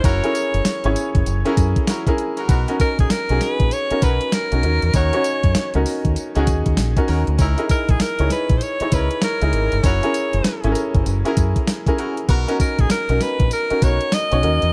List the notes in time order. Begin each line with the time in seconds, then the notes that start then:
0.04 F#1 C#4 E4 F#4 A#4 C#5, kick, closed hi-hat, tambourine
0.24 C#4 E4 G#4 A#4, closed hi-hat
0.35 closed hi-hat, tambourine
0.54 F#1, closed hi-hat
0.65 muted fingered electric bass stroke, snare, closed hi-hat, tambourine
0.84 G#1 C#4 E4 G#4 C#5, closed hi-hat
0.96 closed hi-hat, tambourine
1.15 F#1, kick, closed hi-hat
1.26 F#1, closed hi-hat, tambourine
1.45 C#4 E4 F#4 G#4 A#4, closed hi-hat
1.57 F#2, kick, closed hi-hat, tambourine
1.76 kick, closed hi-hat
1.87 C#4 E4 F#4 A#4, snare, closed hi-hat, tambourine
2.07 C#4 E4 G#4 A#4, kick, closed hi-hat
2.18 closed hi-hat
2.37 C#4 E4 F#4 A#4, closed hi-hat
2.49 B1 B3 D#4 F#4 A#4, kick, closed hi-hat, tambourine
2.68 C#4 D#4 F#4 A#4, closed hi-hat
2.80 A#4, kick, closed hi-hat, tambourine
2.99 A#1 G#4, kick, closed hi-hat
3.10 A#4, snare, closed hi-hat, tambourine
3.29 B1 C#4 D#4 F#4 G#4, closed hi-hat
3.41 B4, snare, closed hi-hat, tambourine
3.60 A#1, kick, closed hi-hat
3.71 C#5, closed hi-hat, tambourine
3.91 C#4 D#4 F#4 A#4, muted fingered electric bass stroke, closed hi-hat
4.02 B1 B3 D#4 F#4 A#4 B4, kick, closed hi-hat, tambourine
4.21 closed hi-hat
4.32 A#4, snare, closed hi-hat, tambourine
4.52 B1 C#4 D#4 F#4 A#4, closed hi-hat
4.63 D#2 C#4 D#4 F#4 A#4, closed hi-hat
4.82 E2, closed hi-hat
4.94 D#2 C#4 D#4 F#4 A#4 C#5, kick, closed hi-hat, tambourine
5.13 C#4 D#4 F#4 C#5, closed hi-hat
5.24 closed hi-hat, tambourine
5.43 F#2, kick, closed hi-hat
5.55 muted fingered electric bass stroke, snare, closed hi-hat, tambourine
5.74 C#2 C#4 D#4 F#4 A#4, closed hi-hat
5.86 open hi-hat, tambourine
6.05 D#2, kick, closed hi-hat
6.16 closed hi-hat, tambourine
6.35 C#2 C#4 D#4 F#4 G#4 A#4, closed hi-hat
6.47 D#2, kick, closed hi-hat, tambourine
6.66 D#2, kick, closed hi-hat
6.77 A#1, snare, closed hi-hat, tambourine
6.97 C#4 D#4 F#4 A#4, kick, closed hi-hat
7.08 D#2 C#4 D#4 F#4 A#4, open hi-hat
7.27 D2, closed hi-hat
7.38 C#2 C#4 D#4 E4 A#4, kick, closed hi-hat, tambourine
7.58 D#4 E4 G#4 A#4, closed hi-hat
7.69 A#4, kick, closed hi-hat, tambourine
7.89 A#1 G#4, kick, closed hi-hat
8.00 A#4, muted fingered electric bass stroke, snare, closed hi-hat, tambourine
8.19 C#2 D#4 E4 G#4 C#5, closed hi-hat
8.30 B4, snare, closed hi-hat, tambourine
8.49 A#1, kick, closed hi-hat
8.58 C5, closed hi-hat, tambourine
8.63 C#5
8.80 D#4 E4 G#4 C#5, muted fingered electric bass stroke, closed hi-hat
8.92 C#2 C#4 D#4 E4 A#4 B4, kick, closed hi-hat, tambourine
9.11 closed hi-hat
9.22 A#4, snare, closed hi-hat, tambourine
9.42 C#2 D#4 E4 G#4 A#4, closed hi-hat
9.53 G#1, closed hi-hat
9.72 G1, closed hi-hat
9.83 F#1 C#4 E4 F#4 A#4 C#5, kick, closed hi-hat, tambourine
10.03 C#4 E4 G#4 A#4, closed hi-hat
10.14 closed hi-hat, tambourine
10.33 F#1, closed hi-hat
10.44 muted fingered electric bass stroke, snare, closed hi-hat, tambourine
10.64 G#1 C#4 E4 G#4 A4, closed hi-hat
10.72 A#4, closed hi-hat, tambourine
10.95 F#1, kick, closed hi-hat
11.06 F#1, closed hi-hat, tambourine
11.25 C#4 E4 F#4 G#4 A#4, closed hi-hat
11.37 F#2, kick, closed hi-hat, tambourine
11.56 kick, closed hi-hat
11.67 snare, closed hi-hat, tambourine
11.87 C#4 E4 G#4 A#4, kick, closed hi-hat
11.98 C#4 E4 F#4 A#4, closed hi-hat
12.17 closed hi-hat
12.28 B1 B3 D#4 F#4 A#4, kick, closed hi-hat, tambourine
12.48 C#4 D#4 F#4 A#4, closed hi-hat
12.60 A#4, kick, closed hi-hat, tambourine
12.79 A#1 G#4, kick, closed hi-hat
12.90 A#4, snare, closed hi-hat, tambourine
13.09 B1 C#4 D#4 F#4 A#4, closed hi-hat
13.21 B4, snare, closed hi-hat, tambourine
13.40 A#1, kick, closed hi-hat
13.51 A#4, closed hi-hat, tambourine
13.70 C#4 D#4 F#4 A#4, muted fingered electric bass stroke, closed hi-hat
13.82 B1 B3 D#4 F#4 A#4 C#5, kick, closed hi-hat, tambourine
14.01 closed hi-hat
14.12 D#5, snare, closed hi-hat, tambourine
14.31 B1 C#4 D#4 F#4 C#5, closed hi-hat
14.43 D#2 C#4 D#4 F#4 A#4, closed hi-hat
14.62 E2, closed hi-hat